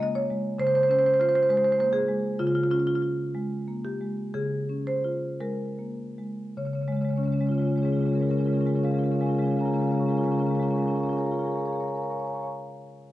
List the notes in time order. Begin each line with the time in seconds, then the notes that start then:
Already playing: C#3 G#3
0.00 A#3 D#5
0.15 C#5
0.30 G#3
0.59 C#3 C5
0.67 C5
0.75 C5
0.83 C5
0.89 C#4 C5
0.99 C5
1.06 C5
1.14 C5
1.19 F4 C5
1.29 C5
1.35 C5
1.43 C5
1.49 G#3 C5
1.57 C5
1.64 C5
1.72 C5
1.79 A#3 C5
1.93 G#4
2.08 G#3
2.39 C#3 F4
2.47 F4
2.55 F4
2.64 F4
2.71 C#4 F4
2.80 F4
2.87 F4
2.95 F4
3.02 F4
3.35 G#3
3.68 A#3
3.85 G4
4.01 G#3
4.34 C#3 G#4
4.69 C#4
4.87 C5
5.04 F4
5.41 G#3 A#4
5.79 A#3
6.18 G#3
6.57 C#3 C#5
6.65 C#3 C#5
6.73 C#3 C#5
6.81 C#3 C#5
6.88 G#3 C#5
6.92 C#3 C#5
6.97 G#3
7.01 C#3 G#3 C#5
7.09 C#3 C#5
7.13 G#3 C#5
7.18 C#3 C#4
7.23 G#3 C#4 C#5
7.28 C#3 G#3
7.32 C#4 C#5
7.37 C#3 G#3 C#5
7.42 C#3 C#4
7.47 G#3 F4 C#5
7.51 C#3 C#4 C#5
7.58 C#3 G#3 C#4 F4
7.62 F4 C#5
7.67 C#3 G#3 C#4 C#5
7.72 F4
7.76 C#3 G#3 C#4 F4 C#5
7.82 G#3 C#4 F4 G#4 C#5
7.88 C#3 C#4 G#4 C#5
7.92 C#3 G#3 F4 G#4
7.99 C#4 F4 C#5
8.03 C#3 G#3 C#4 G#4 C#5
8.07 F4 G#4
8.12 C#3 G#3 C#4 F4 A#4 C#5
8.17 G#4 C#5
8.21 C#3 G#3 C#4 F4 G#4 A#4
8.27 G#3 F4 G#4 A#4 C#5
8.31 C#3 C#4 C#5
8.36 G#3 C#4 F4 G#4 A#4
8.40 C#3 C#5
8.44 G#3 C#4 F4 G#4 A#4
8.49 C#3 A#4 C#5
8.53 C#3 G#3 C#4 F4 G#4
8.59 C#4 F4 G#4 A#4 C#5
8.66 C#3 G#3 F4 G#4 A#4 C#5
8.70 C#4 G#4
8.75 C#3 G#3 C#4 F4 A#4 C#5
8.81 C#3 G#3 F4 G#4 A#4 C#5 F5
8.87 C#4 G#4 F5
8.91 C#3 G#3 F4 G#4 A#4 C#5
8.96 C#4 F4 A#4 C#5 F5
9.02 C#3 G#3 C#4 G#4 A#4 F5
9.06 F4 G#4 C#5
9.11 C#3 G#3 C#4 F4 A#4 C#5 F5
9.16 C#4 G#4 A#4 F5
9.21 C#3 G#3 F4 G#4 C#5 G#5
9.26 C#3 G#3 C#4 F4 A#4 C#5 F5 G#5
9.31 G#4 A#4 F5 G#5
9.35 C#3 C#4 F4 G#4 C#5
9.39 G#3 C#4 A#4 F5 G#5
9.44 F4 G#4 C#5 G#5
9.48 C#3 G#3 C#4 F4 A#4 F5
9.52 G#4 A#4 C#5 G#5
9.56 C#3 G#3 C#4 F4 G#4 F5 G#5
9.60 A#4 C#5 F5 A#5
9.65 C#3 G#3 C#4 F4 G#4 C#5 G#5 A#5
9.71 C#3 G#3 C#4 F4 G#4 A#4 F5 G#5 A#5
9.76 A#4 C#5 F5
9.80 C#3 G#3 C#4 F4 G#4 C#5 G#5 A#5
9.84 F4 G#4 A#4 F5 G#5 A#5
9.89 C#3 G#3 C#4 C#5 F5 G#5
9.94 C#4 F4 G#4 A#4 F5 A#5
9.99 C#3 G#3 F4 G#4 A#4 C#5 G#5 A#5 C#6
10.04 C#4 F5 G#5 C#6
10.08 C#3 G#3 F4 G#4 A#4 C#5 F5 G#5 A#5 C#6
10.14 G#3 C#4 F4 G#4 A#4 C#5 F5 A#5 C#6
10.19 C#3 G#4 G#5
10.23 G#3 C#4 F4 A#4 C#5 F5 G#5 A#5 C#6
10.28 C#3 C#4 F4 G#4 A#4 C#5 G#5 A#5 C#6
10.32 G#3 G#4 F5
10.37 C#3 C#4 F4 A#4 C#5 F5 G#5 A#5 C#6
10.41 G#3 G#4 G#5 A#5 C#6
10.46 C#3 C#4 F4 G#4 A#4 C#5 F5 A#5 C#6
10.50 G#3 A#4 G#5
10.55 C#4 F4 G#4 C#5 F5 G#5 A#5 C#6
10.59 G#3 C#4 F4 G#4 A#4 F5 G#5 A#5 C#6
10.63 C#5 C#6
10.67 G#3 C#4 F4 G#4 A#4 C#5 F5 G#5 A#5
10.73 G#4 A#4 F5 G#5 C#6
10.78 G#3 C#4 F4 C#5 A#5 C#6
10.82 G#4 A#4 F5 G#5 A#5 C#6
10.87 C#4 F4 G#4 A#4 C#5 G#5
10.91 F4 F5 A#5 C#6
10.95 C#4 G#4 A#4 C#5 F5 G#5
11.00 C#4 F4 G#4 C#5 G#5 A#5 C#6
11.06 F4 A#4 F5 A#5 C#6
11.10 C#4 G#4 A#4 C#5 F5 G#5 A#5 C#6
11.16 F4 G#4 C#5 F5 G#5 A#5 C#6
11.20 A#4 G#5
11.24 F4 G#4 A#4 C#5 F5 A#5 C#6
11.30 F4 G#4 C#5 F5 G#5 A#5 C#6
11.34 A#4 G#5 C#6
11.39 F4 G#4 C#5 F5 A#5 C#6
11.44 F4 G#4 A#4 F5 G#5 A#5
11.48 A#4 C#5 G#5 C#6
11.53 G#4 F5 A#5 C#6
11.57 G#4 A#4 C#5 G#5 A#5
11.61 F5 G#5 C#6
11.65 G#4 A#4 C#5 A#5 C#6
11.69 A#4 C#5 F5 G#5
11.74 G#4 F5 G#5 A#5 C#6
11.79 A#4 C#5 F5 A#5 C#6
11.85 A#4 C#5 G#5 C#6
11.89 F5 G#5 A#5 C#6
11.95 A#4 C#5 F5 G#5 A#5 C#6
12.02 A#4 C#5 F5 G#5 A#5 C#6
12.09 A#4 C#5 F5 G#5 A#5 C#6
12.15 G#5 A#5 C#6
12.19 C#5 F5 G#5 C#6
12.25 C#5 F5 A#5 C#6
12.29 G#5 A#5
12.34 C#5 F5 G#5 C#6
12.39 C#5 F5 A#5 C#6
12.44 G#5 A#5 C#6